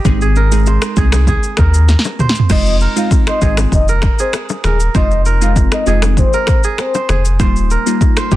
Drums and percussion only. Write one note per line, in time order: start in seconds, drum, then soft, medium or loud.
0.05 kick loud
0.05 low conga medium
0.05 shaker medium
0.21 shaker soft
0.36 low bongo medium
0.36 shaker medium
0.52 shaker loud
0.66 high bongo medium
0.66 shaker medium
0.82 finger snap medium
0.82 cross-stick medium
0.82 shaker medium
0.96 kick medium
0.96 high bongo medium
0.96 shaker medium
1.12 finger snap medium
1.12 cross-stick loud
1.12 low bongo medium
1.12 shaker loud
1.27 kick medium
1.27 low conga medium
1.27 shaker medium
1.43 shaker medium
1.57 finger snap medium
1.57 kick medium
1.57 cross-stick medium
1.57 low bongo medium
1.57 shaker soft
1.74 shaker medium
1.89 snare medium
1.89 high bongo medium
1.89 shaker medium
1.99 snare medium
2.04 low bongo medium
2.04 shaker medium
2.19 mid tom medium
2.19 high bongo medium
2.19 low conga medium
2.19 shaker medium
2.29 snare medium
2.35 shaker medium
2.40 floor tom medium
2.50 kick loud
2.50 crash medium
2.50 low conga medium
2.50 shaker medium
2.66 shaker soft
2.80 shaker medium
2.97 shaker medium
3.11 kick medium
3.11 high bongo medium
3.11 shaker medium
3.27 finger snap medium
3.27 cross-stick medium
3.27 shaker medium
3.42 kick loud
3.42 high bongo medium
3.42 shaker medium
3.57 finger snap medium
3.57 cross-stick medium
3.57 low bongo medium
3.57 shaker medium
3.72 kick medium
3.72 low conga medium
3.72 shaker medium
3.88 shaker medium
4.02 finger snap medium
4.02 kick medium
4.02 cross-stick medium
4.02 low bongo medium
4.02 shaker soft
4.19 shaker medium
4.33 finger snap medium
4.33 cross-stick loud
4.33 high bongo medium
4.33 shaker medium
4.49 low bongo medium
4.49 shaker medium
4.64 finger snap medium
4.64 cross-stick medium
4.64 high bongo medium
4.64 low conga medium
4.64 shaker medium
4.80 shaker medium
4.95 kick loud
4.95 low conga medium
4.95 shaker medium
5.11 shaker soft
5.25 shaker medium
5.42 shaker medium
5.56 kick medium
5.56 high bongo medium
5.56 shaker medium
5.72 finger snap medium
5.72 cross-stick medium
5.72 shaker medium
5.86 high bongo medium
5.86 shaker medium
6.02 finger snap medium
6.02 cross-stick loud
6.02 low bongo medium
6.02 shaker medium
6.17 kick medium
6.17 low conga medium
6.17 shaker medium
6.33 shaker medium
6.47 finger snap medium
6.47 kick loud
6.47 cross-stick loud
6.47 low bongo medium
6.47 shaker soft
6.64 shaker medium
6.78 finger snap medium
6.78 cross-stick loud
6.78 high bongo medium
6.78 shaker medium
6.94 low bongo medium
6.94 shaker medium
7.09 finger snap medium
7.09 cross-stick medium
7.09 high bongo medium
7.09 low conga medium
7.09 shaker medium
7.25 shaker medium
7.40 kick loud
7.40 low conga medium
7.40 shaker medium
7.56 shaker soft
7.70 shaker medium
7.87 shaker loud
8.01 kick medium
8.01 high bongo medium
8.01 shaker medium
8.17 finger snap medium
8.17 cross-stick medium
8.17 shaker medium
8.31 kick medium
8.31 high bongo medium
8.31 shaker medium